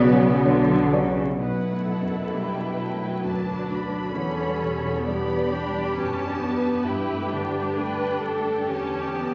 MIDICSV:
0, 0, Header, 1, 10, 480
1, 0, Start_track
1, 0, Key_signature, 2, "minor"
1, 0, Tempo, 961538
1, 696, Time_signature, 3, 2, 24, 8
1, 696, Tempo, 924499
1, 1656, Tempo, 910470
1, 4871, End_track
2, 0, Start_track
2, 0, Title_t, "Violin section"
2, 0, Program_c, 0, 48
2, 0, Note_on_c, 0, 59, 85
2, 442, Note_off_c, 0, 59, 0
2, 693, Note_on_c, 0, 71, 36
2, 696, Note_on_c, 0, 78, 30
2, 1156, Note_off_c, 0, 78, 0
2, 1180, Note_on_c, 0, 79, 34
2, 1656, Note_on_c, 0, 81, 42
2, 1658, Note_off_c, 0, 79, 0
2, 1895, Note_on_c, 0, 83, 40
2, 1898, Note_off_c, 0, 81, 0
2, 2116, Note_off_c, 0, 71, 0
2, 2134, Note_on_c, 0, 73, 41
2, 2606, Note_off_c, 0, 73, 0
2, 2608, Note_off_c, 0, 83, 0
2, 2614, Note_on_c, 0, 83, 44
2, 2615, Note_on_c, 0, 74, 42
2, 3079, Note_off_c, 0, 83, 0
2, 3082, Note_on_c, 0, 71, 52
2, 3083, Note_on_c, 0, 81, 53
2, 3089, Note_off_c, 0, 74, 0
2, 3557, Note_on_c, 0, 79, 41
2, 3561, Note_off_c, 0, 81, 0
2, 4032, Note_off_c, 0, 79, 0
2, 4037, Note_on_c, 0, 67, 44
2, 4038, Note_on_c, 0, 79, 38
2, 4041, Note_off_c, 0, 71, 0
2, 4516, Note_off_c, 0, 79, 0
2, 4531, Note_on_c, 0, 81, 41
2, 4871, Note_off_c, 0, 67, 0
2, 4871, Note_off_c, 0, 81, 0
2, 4871, End_track
3, 0, Start_track
3, 0, Title_t, "Violin section"
3, 0, Program_c, 1, 48
3, 0, Note_on_c, 1, 71, 97
3, 459, Note_off_c, 1, 71, 0
3, 4871, End_track
4, 0, Start_track
4, 0, Title_t, "Flute"
4, 0, Program_c, 2, 73
4, 0, Note_on_c, 2, 66, 90
4, 455, Note_off_c, 2, 66, 0
4, 4871, End_track
5, 0, Start_track
5, 0, Title_t, "French horn section"
5, 0, Program_c, 3, 60
5, 0, Note_on_c, 3, 66, 90
5, 461, Note_off_c, 3, 66, 0
5, 4871, End_track
6, 0, Start_track
6, 0, Title_t, "Viola section"
6, 0, Program_c, 4, 48
6, 0, Note_on_c, 4, 59, 78
6, 435, Note_off_c, 4, 59, 0
6, 697, Note_on_c, 4, 64, 27
6, 697, Note_on_c, 4, 71, 31
6, 920, Note_off_c, 4, 71, 0
6, 940, Note_on_c, 4, 69, 32
6, 1178, Note_off_c, 4, 69, 0
6, 1178, Note_on_c, 4, 55, 34
6, 1417, Note_on_c, 4, 54, 33
6, 1418, Note_off_c, 4, 55, 0
6, 1636, Note_off_c, 4, 64, 0
6, 1657, Note_on_c, 4, 62, 33
6, 2138, Note_on_c, 4, 61, 35
6, 2138, Note_on_c, 4, 69, 37
6, 2139, Note_off_c, 4, 54, 0
6, 2139, Note_off_c, 4, 62, 0
6, 2609, Note_off_c, 4, 61, 0
6, 2609, Note_off_c, 4, 69, 0
6, 2612, Note_on_c, 4, 59, 42
6, 2613, Note_on_c, 4, 67, 42
6, 2850, Note_on_c, 4, 62, 48
6, 2853, Note_off_c, 4, 59, 0
6, 3088, Note_off_c, 4, 62, 0
6, 3090, Note_on_c, 4, 61, 48
6, 3322, Note_off_c, 4, 61, 0
6, 3326, Note_on_c, 4, 59, 50
6, 3555, Note_off_c, 4, 67, 0
6, 3561, Note_on_c, 4, 67, 41
6, 3562, Note_on_c, 4, 64, 43
6, 3565, Note_off_c, 4, 59, 0
6, 3799, Note_on_c, 4, 62, 43
6, 3804, Note_off_c, 4, 64, 0
6, 4034, Note_off_c, 4, 67, 0
6, 4043, Note_on_c, 4, 71, 42
6, 4285, Note_off_c, 4, 71, 0
6, 4287, Note_on_c, 4, 69, 45
6, 4526, Note_off_c, 4, 62, 0
6, 4529, Note_off_c, 4, 69, 0
6, 4531, Note_on_c, 4, 67, 38
6, 4532, Note_on_c, 4, 61, 43
6, 4775, Note_on_c, 4, 59, 42
6, 4776, Note_off_c, 4, 61, 0
6, 4871, Note_off_c, 4, 59, 0
6, 4871, Note_off_c, 4, 67, 0
6, 4871, End_track
7, 0, Start_track
7, 0, Title_t, "Harp"
7, 0, Program_c, 5, 46
7, 0, Note_on_c, 5, 47, 76
7, 0, Note_on_c, 5, 54, 63
7, 0, Note_on_c, 5, 57, 68
7, 0, Note_on_c, 5, 59, 51
7, 52, Note_off_c, 5, 54, 0
7, 58, Note_on_c, 5, 54, 66
7, 75, Note_off_c, 5, 57, 0
7, 377, Note_off_c, 5, 54, 0
7, 383, Note_on_c, 5, 54, 56
7, 540, Note_off_c, 5, 59, 0
7, 546, Note_on_c, 5, 59, 56
7, 696, Note_off_c, 5, 47, 0
7, 702, Note_on_c, 5, 47, 32
7, 939, Note_off_c, 5, 54, 0
7, 946, Note_on_c, 5, 54, 25
7, 1183, Note_on_c, 5, 62, 30
7, 1419, Note_on_c, 5, 69, 35
7, 1660, Note_on_c, 5, 71, 35
7, 1896, Note_off_c, 5, 62, 0
7, 1902, Note_on_c, 5, 62, 35
7, 2143, Note_on_c, 5, 40, 39
7, 2159, Note_off_c, 5, 69, 0
7, 2161, Note_off_c, 5, 47, 0
7, 2163, Note_off_c, 5, 54, 0
7, 2384, Note_on_c, 5, 47, 33
7, 2579, Note_off_c, 5, 59, 0
7, 2618, Note_off_c, 5, 62, 0
7, 2624, Note_on_c, 5, 62, 40
7, 2858, Note_on_c, 5, 67, 43
7, 3090, Note_off_c, 5, 71, 0
7, 3096, Note_on_c, 5, 71, 40
7, 3322, Note_off_c, 5, 62, 0
7, 3329, Note_on_c, 5, 62, 37
7, 3568, Note_on_c, 5, 43, 45
7, 3587, Note_off_c, 5, 40, 0
7, 3587, Note_off_c, 5, 47, 0
7, 3807, Note_on_c, 5, 50, 31
7, 4042, Note_off_c, 5, 62, 0
7, 4048, Note_on_c, 5, 62, 36
7, 4291, Note_on_c, 5, 69, 40
7, 4527, Note_off_c, 5, 71, 0
7, 4533, Note_on_c, 5, 71, 35
7, 4776, Note_off_c, 5, 62, 0
7, 4782, Note_on_c, 5, 62, 31
7, 4871, Note_off_c, 5, 43, 0
7, 4871, Note_off_c, 5, 50, 0
7, 4871, Note_off_c, 5, 62, 0
7, 4871, Note_off_c, 5, 67, 0
7, 4871, Note_off_c, 5, 69, 0
7, 4871, Note_off_c, 5, 71, 0
7, 4871, End_track
8, 0, Start_track
8, 0, Title_t, "Grand piano"
8, 0, Program_c, 6, 0
8, 0, Control_c, 6, 64, 127
8, 0, Note_on_c, 6, 35, 74
8, 0, Note_on_c, 6, 54, 56
8, 0, Note_on_c, 6, 62, 54
8, 0, Note_on_c, 6, 73, 52
8, 0, Note_on_c, 6, 74, 57
8, 200, Note_off_c, 6, 54, 0
8, 201, Note_off_c, 6, 73, 0
8, 202, Note_off_c, 6, 74, 0
8, 224, Note_on_c, 6, 54, 51
8, 225, Note_off_c, 6, 62, 0
8, 225, Note_on_c, 6, 62, 48
8, 228, Note_on_c, 6, 73, 59
8, 443, Note_off_c, 6, 54, 0
8, 443, Note_off_c, 6, 62, 0
8, 445, Note_off_c, 6, 73, 0
8, 463, Note_on_c, 6, 54, 62
8, 466, Note_on_c, 6, 74, 59
8, 467, Note_on_c, 6, 73, 59
8, 678, Note_off_c, 6, 54, 0
8, 679, Note_off_c, 6, 74, 0
8, 680, Note_off_c, 6, 73, 0
8, 698, Note_off_c, 6, 35, 0
8, 698, Note_on_c, 6, 35, 32
8, 707, Control_c, 6, 64, 0
8, 777, Control_c, 6, 64, 127
8, 859, Note_on_c, 6, 57, 23
8, 1019, Note_on_c, 6, 42, 27
8, 1114, Note_off_c, 6, 57, 0
8, 1181, Note_on_c, 6, 57, 27
8, 1274, Note_off_c, 6, 42, 0
8, 1341, Note_on_c, 6, 71, 30
8, 1435, Note_off_c, 6, 57, 0
8, 1497, Note_on_c, 6, 57, 28
8, 1595, Note_off_c, 6, 71, 0
8, 1655, Note_on_c, 6, 42, 26
8, 1754, Note_off_c, 6, 57, 0
8, 1820, Note_on_c, 6, 62, 31
8, 1914, Note_off_c, 6, 42, 0
8, 1978, Note_on_c, 6, 71, 35
8, 2076, Note_off_c, 6, 62, 0
8, 2119, Note_off_c, 6, 35, 0
8, 2135, Note_on_c, 6, 40, 41
8, 2139, Note_off_c, 6, 71, 0
8, 2149, Control_c, 6, 64, 0
8, 2226, Control_c, 6, 64, 127
8, 2294, Note_on_c, 6, 55, 32
8, 2453, Note_on_c, 6, 47, 36
8, 2553, Note_off_c, 6, 55, 0
8, 2614, Note_on_c, 6, 55, 40
8, 2711, Note_off_c, 6, 47, 0
8, 2776, Note_on_c, 6, 71, 39
8, 2869, Note_off_c, 6, 55, 0
8, 2932, Note_on_c, 6, 55, 37
8, 3028, Note_off_c, 6, 71, 0
8, 3068, Note_off_c, 6, 40, 0
8, 3086, Note_on_c, 6, 47, 35
8, 3184, Note_off_c, 6, 55, 0
8, 3244, Note_on_c, 6, 62, 36
8, 3340, Note_off_c, 6, 47, 0
8, 3398, Note_on_c, 6, 71, 43
8, 3500, Note_off_c, 6, 62, 0
8, 3556, Note_on_c, 6, 43, 43
8, 3561, Note_off_c, 6, 71, 0
8, 3574, Control_c, 6, 64, 0
8, 3664, Control_c, 6, 64, 127
8, 3719, Note_on_c, 6, 57, 33
8, 3879, Note_on_c, 6, 50, 36
8, 3979, Note_off_c, 6, 57, 0
8, 4040, Note_on_c, 6, 57, 37
8, 4139, Note_off_c, 6, 50, 0
8, 4205, Note_on_c, 6, 71, 34
8, 4300, Note_off_c, 6, 57, 0
8, 4366, Note_on_c, 6, 57, 33
8, 4464, Note_off_c, 6, 71, 0
8, 4503, Note_off_c, 6, 43, 0
8, 4533, Note_on_c, 6, 50, 32
8, 4627, Note_off_c, 6, 57, 0
8, 4697, Note_on_c, 6, 62, 30
8, 4793, Note_off_c, 6, 50, 0
8, 4871, Note_off_c, 6, 62, 0
8, 4871, End_track
9, 0, Start_track
9, 0, Title_t, "Cello section"
9, 0, Program_c, 7, 48
9, 0, Note_on_c, 7, 49, 84
9, 221, Note_off_c, 7, 49, 0
9, 223, Note_on_c, 7, 50, 84
9, 462, Note_off_c, 7, 50, 0
9, 466, Note_on_c, 7, 49, 74
9, 699, Note_off_c, 7, 49, 0
9, 703, Note_on_c, 7, 47, 45
9, 1639, Note_off_c, 7, 47, 0
9, 1660, Note_on_c, 7, 38, 37
9, 2131, Note_off_c, 7, 38, 0
9, 2139, Note_on_c, 7, 40, 47
9, 3091, Note_off_c, 7, 40, 0
9, 3093, Note_on_c, 7, 42, 44
9, 3567, Note_off_c, 7, 42, 0
9, 3569, Note_on_c, 7, 43, 53
9, 4512, Note_off_c, 7, 43, 0
9, 4534, Note_on_c, 7, 40, 45
9, 4871, Note_off_c, 7, 40, 0
9, 4871, End_track
10, 0, Start_track
10, 0, Title_t, "Double bass section"
10, 0, Program_c, 8, 48
10, 0, Note_on_c, 8, 35, 82
10, 574, Note_off_c, 8, 35, 0
10, 4871, End_track
0, 0, End_of_file